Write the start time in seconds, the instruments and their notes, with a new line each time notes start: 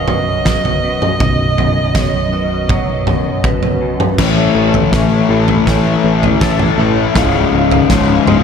Already playing: picked electric bass B0, clean electric guitar B2 F#3, vibraphone B4, violin D#5
0.08 clean electric guitar F#2, floor tom, mid tom
0.45 clean electric guitar B2, kick, snare
0.65 floor tom
0.83 clean electric guitar F#2, vibraphone B4
1.02 mid tom
1.20 picked electric bass B0, clean electric guitar B1, vibraphone D#5, kick, floor tom
1.58 clean electric guitar F#2, floor tom
1.95 clean electric guitar F#2, vibraphone C#5, kick, snare, floor tom
2.32 clean electric guitar B2, vibraphone D#5
2.68 clean electric guitar F#3, vibraphone C#5, kick, floor tom, mid tom
3.06 clean electric guitar F#2, floor tom, mid tom
3.43 clean electric guitar B2, vibraphone B4, kick
3.63 floor tom
3.81 clean electric guitar F#2
4.00 mid tom
4.18 picked electric bass A1, clean electric guitar A2, overdriven electric guitar A2 E3 A3, vibraphone C#5, kick, snare, floor tom, crash
4.55 picked electric bass A1, clean electric guitar A3, vibraphone C#5
4.74 floor tom
4.92 picked electric bass A1, overdriven electric guitar A2 E3 A3, clean electric guitar C#4, kick, snare
5.29 picked electric bass A1, overdriven electric guitar A2 E3 A3, clean electric guitar E4, vibraphone A4
5.48 floor tom
5.67 picked electric bass A1, overdriven electric guitar A2 E3 A3, clean electric guitar A3, vibraphone C#5, kick, snare
6.03 picked electric bass A1, clean electric guitar C#4
6.23 floor tom
6.40 picked electric bass A1, overdriven electric guitar A2 E3 A3, clean electric guitar A4, kick, snare
6.59 floor tom, mid tom
6.78 picked electric bass A1, overdriven electric guitar A2 E3 A3, clean electric guitar E4, vibraphone C#5
7.15 picked electric bass C#1, overdriven electric guitar C#2 G#2 C#3, clean electric guitar C#2, vibraphone F5, kick, snare, floor tom
7.53 picked electric bass C#1, clean electric guitar C#3
7.71 floor tom
7.90 picked electric bass C#1, overdriven electric guitar C#2 G#2 C#3, clean electric guitar F3, vibraphone C#5, kick, snare
8.26 picked electric bass C#1, overdriven electric guitar C#2 G#2 C#3, clean electric guitar G#3, vibraphone D#5, mid tom